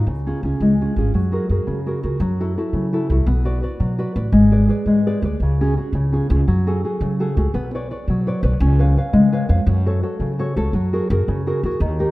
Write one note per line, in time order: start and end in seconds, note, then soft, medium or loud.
0.07 0.30 C#2 medium
0.07 0.43 C#3 medium
0.27 0.43 C#4 medium
0.27 0.43 F4 soft
0.27 0.44 G#4 medium
0.43 0.54 C#2 medium
0.43 0.73 C#4 soft
0.43 0.73 F4 soft
0.43 0.73 G#4 soft
0.60 0.84 C#2 medium
0.60 0.96 G#3 medium
0.81 0.96 C#4 medium
0.81 0.97 F4 soft
0.81 0.97 G#4 medium
0.96 1.08 G#1 medium
0.96 1.11 C#4 soft
0.96 1.12 F4 soft
0.96 1.12 G#4 soft
1.14 1.37 F#2 medium
1.14 1.49 F#3 medium
1.32 1.49 F#4 soft
1.32 1.49 G#4 soft
1.32 1.50 A#4 soft
1.49 1.61 F#2 medium
1.49 1.79 F#4 soft
1.49 1.79 G#4 soft
1.49 1.80 A#4 soft
1.67 1.91 F#2 medium
1.67 2.02 C#3 medium
1.86 2.02 F#4 soft
1.86 2.02 G#4 soft
1.86 2.03 A#4 medium
2.03 2.15 C#2 medium
2.03 2.17 F#4 soft
2.03 2.18 G#4 soft
2.03 2.18 A#4 soft
2.20 2.55 F#2 medium
2.20 2.56 F#3 medium
2.40 2.56 E4 soft
2.40 2.57 F#4 soft
2.40 2.56 A4 medium
2.58 2.86 E4 soft
2.58 2.86 F#4 soft
2.58 2.86 A4 soft
2.73 3.09 C#3 medium
2.73 2.97 F#3 medium
2.93 3.10 E4 medium
2.93 3.10 F#4 soft
2.93 3.10 A4 medium
3.10 3.21 C2 medium
3.10 3.25 E4 soft
3.10 3.25 F#4 soft
3.10 3.25 A4 soft
3.26 3.61 B1 medium
3.26 3.62 B3 medium
3.45 3.61 F#4 medium
3.45 3.62 B4 soft
3.45 3.62 D5 medium
3.62 3.92 F#4 soft
3.62 3.92 B4 soft
3.62 3.92 D5 soft
3.80 4.04 B2 medium
3.80 4.15 F#3 medium
3.98 4.15 F#4 medium
3.98 4.15 B4 medium
3.98 4.16 D5 medium
4.16 4.27 A1 medium
4.16 4.30 F#4 soft
4.16 4.30 B4 soft
4.16 4.31 D5 soft
4.32 4.67 G#1 medium
4.32 4.68 G#3 medium
4.52 4.68 G#4 soft
4.52 4.69 B4 soft
4.52 4.69 D5 medium
4.69 4.98 G#4 medium
4.69 4.99 B4 soft
4.69 4.99 D5 soft
4.86 5.09 G#2 medium
4.86 5.22 G#3 medium
5.07 5.23 G#4 soft
5.07 5.23 B4 medium
5.07 5.24 D5 medium
5.22 5.34 D2 medium
5.22 5.37 G#4 soft
5.22 5.38 B4 soft
5.22 5.38 D5 soft
5.40 5.75 C#2 medium
5.40 5.76 C#3 medium
5.61 5.77 C#4 medium
5.61 5.76 F#4 soft
5.61 5.77 G#4 medium
5.77 5.91 C#4 soft
5.77 5.91 F#4 soft
5.77 5.91 G#4 soft
5.93 6.17 C#2 medium
5.93 6.29 C#3 medium
6.12 6.29 C#4 soft
6.12 6.29 F4 soft
6.12 6.30 G#4 medium
6.30 6.41 C#2 loud
6.30 6.44 C#4 soft
6.30 6.44 F4 soft
6.30 6.45 G#4 medium
6.48 6.82 F#2 medium
6.48 6.83 F#3 medium
6.67 6.83 F#4 medium
6.67 6.84 G#4 soft
6.67 6.84 A4 medium
6.84 7.13 F#4 soft
6.84 7.13 G#4 soft
6.84 7.13 A4 soft
7.01 7.36 C#3 medium
7.01 7.24 F#3 medium
7.20 7.36 F#4 medium
7.20 7.36 G#4 medium
7.20 7.37 A4 medium
7.37 7.48 C#2 medium
7.37 7.51 F#4 soft
7.37 7.51 G#4 soft
7.37 7.52 A4 medium
7.54 7.89 B1 medium
7.54 7.74 B3 medium
7.75 7.90 B4 soft
7.75 7.90 C#5 soft
7.75 7.90 D5 medium
7.91 8.19 B4 soft
7.91 8.20 C#5 soft
7.91 8.19 D5 medium
8.08 8.31 B2 medium
8.08 8.43 F#3 medium
8.27 8.42 B4 medium
8.27 8.43 C#5 medium
8.27 8.43 D5 medium
8.43 8.54 B1 loud
8.43 8.57 B4 medium
8.43 8.58 C#5 soft
8.43 8.58 D5 medium
8.60 8.95 C#2 loud
8.60 8.96 C#4 medium
8.79 8.96 B4 soft
8.79 8.97 C#5 medium
8.79 8.97 F5 medium
8.97 9.26 B4 soft
8.97 9.26 C#5 soft
8.97 9.26 F5 medium
9.13 9.37 C#3 medium
9.13 9.48 G#3 medium
9.32 9.48 B4 medium
9.32 9.48 C#5 medium
9.32 9.49 F5 medium
9.49 9.61 F2 medium
9.49 9.63 B4 soft
9.49 9.63 C#5 soft
9.49 9.64 F5 soft
9.67 10.01 F#2 loud
9.67 10.03 F#3 medium
9.86 10.02 F#4 medium
9.86 10.02 A4 soft
9.86 10.02 C#5 medium
10.03 10.32 F#4 medium
10.03 10.32 A4 soft
10.03 10.32 C#5 soft
10.20 10.56 C#3 medium
10.20 10.43 F#3 medium
10.39 10.55 F#4 medium
10.39 10.56 A4 soft
10.39 10.56 C#5 medium
10.56 10.68 C#2 medium
10.56 10.70 F#4 soft
10.56 10.73 A4 medium
10.56 10.71 C#5 soft
10.73 10.97 F#2 medium
10.73 11.09 F#3 medium
10.93 11.10 F#4 medium
10.93 11.10 G#4 soft
10.93 11.11 A#4 medium
11.10 11.21 F#2 loud
11.10 11.40 F#4 soft
11.10 11.40 G#4 soft
11.10 11.40 A#4 medium
11.28 11.51 F#2 medium
11.28 11.63 C#3 medium
11.47 11.64 F#4 medium
11.47 11.64 G#4 soft
11.47 11.64 A#4 medium
11.63 11.75 E2 medium
11.63 11.78 F#4 medium
11.63 11.78 G#4 soft
11.63 11.79 A#4 medium
11.80 12.04 D#2 loud
11.80 12.11 D#3 medium
11.99 12.11 D#4 medium
11.99 12.11 G4 medium
11.99 12.11 A#4 medium